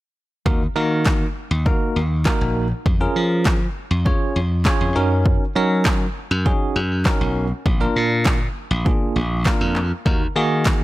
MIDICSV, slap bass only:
0, 0, Header, 1, 2, 480
1, 0, Start_track
1, 0, Key_signature, -6, "minor"
1, 0, Tempo, 600000
1, 366, Time_signature, 4, 2, 24, 8
1, 8670, End_track
2, 0, Start_track
2, 0, Title_t, "Slap bass"
2, 0, Program_c, 0, 36
2, 368, Note_on_c, 0, 39, 103
2, 530, Note_off_c, 0, 39, 0
2, 608, Note_on_c, 0, 51, 90
2, 1014, Note_off_c, 0, 51, 0
2, 1206, Note_on_c, 0, 39, 93
2, 1369, Note_off_c, 0, 39, 0
2, 1568, Note_on_c, 0, 39, 81
2, 1811, Note_off_c, 0, 39, 0
2, 1929, Note_on_c, 0, 34, 84
2, 2172, Note_off_c, 0, 34, 0
2, 2287, Note_on_c, 0, 41, 103
2, 2449, Note_off_c, 0, 41, 0
2, 2527, Note_on_c, 0, 53, 89
2, 2933, Note_off_c, 0, 53, 0
2, 3126, Note_on_c, 0, 41, 92
2, 3288, Note_off_c, 0, 41, 0
2, 3487, Note_on_c, 0, 41, 87
2, 3730, Note_off_c, 0, 41, 0
2, 3845, Note_on_c, 0, 41, 85
2, 3927, Note_off_c, 0, 41, 0
2, 3966, Note_on_c, 0, 42, 100
2, 4291, Note_off_c, 0, 42, 0
2, 4447, Note_on_c, 0, 54, 91
2, 4853, Note_off_c, 0, 54, 0
2, 5047, Note_on_c, 0, 42, 93
2, 5209, Note_off_c, 0, 42, 0
2, 5406, Note_on_c, 0, 42, 86
2, 5650, Note_off_c, 0, 42, 0
2, 5767, Note_on_c, 0, 35, 84
2, 6010, Note_off_c, 0, 35, 0
2, 6126, Note_on_c, 0, 34, 102
2, 6289, Note_off_c, 0, 34, 0
2, 6368, Note_on_c, 0, 46, 91
2, 6774, Note_off_c, 0, 46, 0
2, 6966, Note_on_c, 0, 34, 93
2, 7128, Note_off_c, 0, 34, 0
2, 7326, Note_on_c, 0, 34, 87
2, 7570, Note_off_c, 0, 34, 0
2, 7686, Note_on_c, 0, 41, 85
2, 7930, Note_off_c, 0, 41, 0
2, 8046, Note_on_c, 0, 39, 104
2, 8209, Note_off_c, 0, 39, 0
2, 8287, Note_on_c, 0, 51, 93
2, 8670, Note_off_c, 0, 51, 0
2, 8670, End_track
0, 0, End_of_file